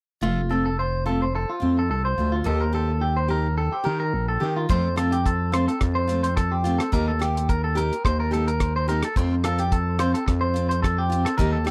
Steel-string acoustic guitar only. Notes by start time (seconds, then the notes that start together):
0.21 F3 A3 F4, muted steel-string acoustic guitar stroke
0.49 A3 C4 F4
1.06 A3 C4 F4
1.60 A3 C4 F4
2.18 A3 F4, muted steel-string acoustic guitar stroke
2.44 A#3 D#4 G4
2.73 D#4 G4
3.28 D#4 G4
3.84 D#4 G4
4.40 D#4 G4
4.69 F3 A3 C4 F4
4.96 A3 C4 F4
5.52 A3 C4 F4
6.07 A3 C4 F4
6.64 A3 C4 F4
6.92 D#3 A#3 D#4 G4
7.19 A#3 D#4 G4
7.75 A#3 D#4 G4
8.31 A#3 D#4 G4
8.88 A#3 D#4 G4
9.16 A3 C4 F4
9.45 C4 F4
9.99 C4 F4
10.54 C4 F4
11.10 C4 F4
11.38 D#3 A#3 D#4 G4
11.64 A#3 D#4 G4